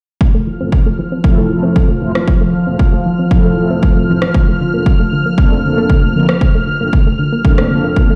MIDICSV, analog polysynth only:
0, 0, Header, 1, 2, 480
1, 0, Start_track
1, 0, Key_signature, -1, "major"
1, 0, Tempo, 517241
1, 193, Time_signature, 4, 2, 24, 8
1, 7568, End_track
2, 0, Start_track
2, 0, Title_t, "Analog polysynth"
2, 0, Program_c, 0, 90
2, 556, Note_on_c, 0, 53, 66
2, 558, Note_on_c, 0, 57, 64
2, 560, Note_on_c, 0, 60, 64
2, 561, Note_on_c, 0, 64, 63
2, 566, Note_on_c, 0, 69, 74
2, 639, Note_off_c, 0, 53, 0
2, 640, Note_off_c, 0, 57, 0
2, 641, Note_off_c, 0, 60, 0
2, 642, Note_off_c, 0, 64, 0
2, 644, Note_off_c, 0, 69, 0
2, 1145, Note_on_c, 0, 53, 83
2, 1147, Note_on_c, 0, 57, 75
2, 1150, Note_on_c, 0, 60, 74
2, 1151, Note_on_c, 0, 64, 77
2, 1156, Note_on_c, 0, 69, 95
2, 1361, Note_off_c, 0, 53, 0
2, 1362, Note_off_c, 0, 57, 0
2, 1364, Note_off_c, 0, 60, 0
2, 1365, Note_off_c, 0, 64, 0
2, 1367, Note_off_c, 0, 69, 0
2, 1392, Note_on_c, 0, 53, 68
2, 1394, Note_on_c, 0, 57, 62
2, 1395, Note_on_c, 0, 60, 63
2, 1398, Note_on_c, 0, 64, 66
2, 1401, Note_on_c, 0, 69, 76
2, 1845, Note_off_c, 0, 53, 0
2, 1846, Note_off_c, 0, 57, 0
2, 1846, Note_off_c, 0, 60, 0
2, 1848, Note_off_c, 0, 64, 0
2, 1850, Note_off_c, 0, 69, 0
2, 1870, Note_on_c, 0, 57, 78
2, 1871, Note_on_c, 0, 53, 89
2, 1875, Note_on_c, 0, 60, 76
2, 1875, Note_on_c, 0, 64, 80
2, 1877, Note_on_c, 0, 72, 97
2, 1960, Note_off_c, 0, 53, 0
2, 1960, Note_off_c, 0, 57, 0
2, 1962, Note_off_c, 0, 60, 0
2, 1962, Note_off_c, 0, 64, 0
2, 1964, Note_off_c, 0, 72, 0
2, 2476, Note_on_c, 0, 53, 68
2, 2478, Note_on_c, 0, 57, 65
2, 2479, Note_on_c, 0, 60, 63
2, 2483, Note_on_c, 0, 64, 65
2, 2484, Note_on_c, 0, 69, 76
2, 2560, Note_off_c, 0, 53, 0
2, 2560, Note_off_c, 0, 57, 0
2, 2561, Note_off_c, 0, 60, 0
2, 2563, Note_off_c, 0, 64, 0
2, 2563, Note_off_c, 0, 69, 0
2, 3071, Note_on_c, 0, 53, 82
2, 3071, Note_on_c, 0, 57, 76
2, 3075, Note_on_c, 0, 60, 75
2, 3077, Note_on_c, 0, 64, 77
2, 3080, Note_on_c, 0, 69, 92
2, 3284, Note_off_c, 0, 53, 0
2, 3284, Note_off_c, 0, 57, 0
2, 3286, Note_off_c, 0, 60, 0
2, 3287, Note_off_c, 0, 64, 0
2, 3289, Note_off_c, 0, 69, 0
2, 3309, Note_on_c, 0, 53, 69
2, 3312, Note_on_c, 0, 57, 63
2, 3313, Note_on_c, 0, 60, 64
2, 3316, Note_on_c, 0, 64, 64
2, 3318, Note_on_c, 0, 69, 77
2, 3764, Note_off_c, 0, 53, 0
2, 3765, Note_off_c, 0, 57, 0
2, 3766, Note_off_c, 0, 60, 0
2, 3767, Note_off_c, 0, 64, 0
2, 3768, Note_off_c, 0, 69, 0
2, 3791, Note_on_c, 0, 53, 87
2, 3795, Note_on_c, 0, 57, 80
2, 3798, Note_on_c, 0, 60, 80
2, 3798, Note_on_c, 0, 64, 78
2, 3800, Note_on_c, 0, 72, 98
2, 3880, Note_off_c, 0, 53, 0
2, 3882, Note_off_c, 0, 57, 0
2, 3884, Note_off_c, 0, 60, 0
2, 3884, Note_off_c, 0, 64, 0
2, 3885, Note_off_c, 0, 72, 0
2, 4394, Note_on_c, 0, 53, 65
2, 4399, Note_on_c, 0, 58, 65
2, 4400, Note_on_c, 0, 60, 64
2, 4401, Note_on_c, 0, 62, 63
2, 4405, Note_on_c, 0, 69, 74
2, 4478, Note_off_c, 0, 53, 0
2, 4481, Note_off_c, 0, 58, 0
2, 4481, Note_off_c, 0, 60, 0
2, 4482, Note_off_c, 0, 62, 0
2, 4484, Note_off_c, 0, 69, 0
2, 4990, Note_on_c, 0, 53, 83
2, 4993, Note_on_c, 0, 58, 77
2, 4996, Note_on_c, 0, 60, 77
2, 4996, Note_on_c, 0, 62, 77
2, 5001, Note_on_c, 0, 69, 88
2, 5204, Note_off_c, 0, 53, 0
2, 5206, Note_off_c, 0, 58, 0
2, 5207, Note_off_c, 0, 60, 0
2, 5207, Note_off_c, 0, 62, 0
2, 5210, Note_off_c, 0, 69, 0
2, 5228, Note_on_c, 0, 53, 71
2, 5232, Note_on_c, 0, 58, 64
2, 5235, Note_on_c, 0, 60, 64
2, 5236, Note_on_c, 0, 62, 66
2, 5238, Note_on_c, 0, 69, 80
2, 5683, Note_off_c, 0, 53, 0
2, 5685, Note_off_c, 0, 58, 0
2, 5686, Note_off_c, 0, 60, 0
2, 5687, Note_off_c, 0, 62, 0
2, 5688, Note_off_c, 0, 69, 0
2, 5711, Note_on_c, 0, 53, 89
2, 5714, Note_on_c, 0, 60, 83
2, 5715, Note_on_c, 0, 58, 84
2, 5716, Note_on_c, 0, 62, 82
2, 5719, Note_on_c, 0, 70, 95
2, 5800, Note_off_c, 0, 53, 0
2, 5802, Note_off_c, 0, 58, 0
2, 5802, Note_off_c, 0, 60, 0
2, 5803, Note_off_c, 0, 62, 0
2, 5804, Note_off_c, 0, 70, 0
2, 6313, Note_on_c, 0, 53, 66
2, 6316, Note_on_c, 0, 58, 63
2, 6316, Note_on_c, 0, 60, 61
2, 6319, Note_on_c, 0, 62, 63
2, 6322, Note_on_c, 0, 69, 77
2, 6398, Note_off_c, 0, 53, 0
2, 6399, Note_off_c, 0, 58, 0
2, 6399, Note_off_c, 0, 60, 0
2, 6401, Note_off_c, 0, 62, 0
2, 6402, Note_off_c, 0, 69, 0
2, 6904, Note_on_c, 0, 53, 84
2, 6907, Note_on_c, 0, 58, 76
2, 6911, Note_on_c, 0, 60, 75
2, 6912, Note_on_c, 0, 62, 79
2, 6914, Note_on_c, 0, 69, 91
2, 7121, Note_off_c, 0, 53, 0
2, 7122, Note_off_c, 0, 58, 0
2, 7124, Note_off_c, 0, 60, 0
2, 7125, Note_off_c, 0, 62, 0
2, 7126, Note_off_c, 0, 69, 0
2, 7145, Note_on_c, 0, 53, 72
2, 7147, Note_on_c, 0, 58, 66
2, 7150, Note_on_c, 0, 60, 64
2, 7153, Note_on_c, 0, 62, 62
2, 7155, Note_on_c, 0, 69, 75
2, 7568, Note_off_c, 0, 53, 0
2, 7568, Note_off_c, 0, 58, 0
2, 7568, Note_off_c, 0, 60, 0
2, 7568, Note_off_c, 0, 62, 0
2, 7568, Note_off_c, 0, 69, 0
2, 7568, End_track
0, 0, End_of_file